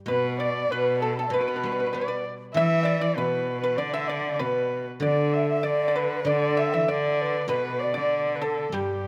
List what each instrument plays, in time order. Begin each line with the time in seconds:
Already playing: guzheng G3
0.06 guzheng B2, cello B2, erhu B4, pipa B4, xiao B4
0.39 xiao D5, pipa D5, erhu D5
0.53 xiao D5
0.71 cello B2, xiao B4, erhu B4, pipa B4
1.00 erhu A4, xiao A4, pipa A4
1.15 erhu A4, pipa A4, xiao A5 B5
1.20 xiao E5 G5
1.27 guzheng B2, xiao B4 D5
1.31 cello B2, erhu B4, pipa B4
1.41 pipa B4
1.48 pipa B4
1.56 pipa B4
1.63 guzheng G3, pipa B4
1.72 pipa B4
1.80 pipa B4
1.86 pipa B4
1.93 guzheng B3, pipa B4, erhu D5
2.01 pipa B4
2.08 pipa B4
2.54 guzheng E3, cello E3, xiao E5, erhu E5, pipa E5
2.83 xiao D5, pipa D5 E5
2.99 xiao D5, pipa D5, erhu D5
3.15 cello B2, xiao B4, erhu B4, pipa B4
3.61 xiao B4, erhu B4, pipa B4
3.77 cello D3, erhu D5, pipa D5, xiao D5
3.93 xiao E5, erhu E5, pipa E5
4.08 erhu D5, xiao D5, pipa D5
4.33 erhu D5
4.39 cello B2, pipa B4, xiao B4, erhu B4
5.00 guzheng D3, cello D3, pipa D5, erhu D5, xiao D5
5.33 erhu E5, xiao E5
5.50 xiao E5, erhu E5
5.63 cello D3, pipa D5, xiao D5, erhu D5
5.88 pipa D5, erhu D5
5.96 pipa B4, xiao B4, erhu B4
6.25 guzheng D3, cello D3, xiao D5, pipa D5, erhu D5
6.57 pipa E5, xiao E5, erhu E5
6.71 cello E3, pipa E5, xiao E5 G5
6.88 cello D3, pipa D5, xiao D5, erhu D5
7.12 xiao D5
7.22 xiao B4
7.26 pipa B4
7.48 guzheng B2, cello B2, pipa B4, erhu B4, xiao B4
7.79 erhu D5, xiao D5
7.94 cello D3, pipa D5, erhu D5, xiao D5
8.35 erhu B4
8.42 pipa A4, erhu A4, xiao A4
8.72 cello G2, guzheng G3, erhu G4, pipa G4, xiao G4